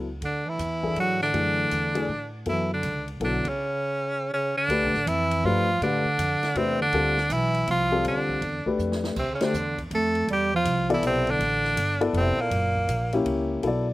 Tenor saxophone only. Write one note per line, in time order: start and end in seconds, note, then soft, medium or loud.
0.25 0.50 D4 medium
0.49 0.98 E4 medium
1.00 1.21 F#4 medium
1.23 2.30 D4 loud
2.49 2.70 E4 medium
2.74 3.07 D4 medium
3.24 3.50 D4 medium
3.49 4.33 C#4 medium
4.33 4.56 C#4 medium
4.57 5.09 D4 loud
5.08 5.47 E4 medium
5.45 5.82 F4 loud
5.83 6.59 D4 medium
6.57 6.81 C4 medium
6.82 7.34 D4 loud
7.32 7.69 E4 loud
7.70 8.04 F4 loud
8.08 8.71 D4 medium
9.19 9.32 C4 medium
9.35 9.46 C#4 medium
9.45 9.80 D4 medium
9.95 10.28 A4 medium
10.33 10.53 G4 loud
10.55 10.89 F4 medium
10.94 11.04 E4 medium
11.06 11.32 C4 loud
11.31 12.03 D4 loud
12.17 12.42 C4 medium
12.41 13.27 A#3 medium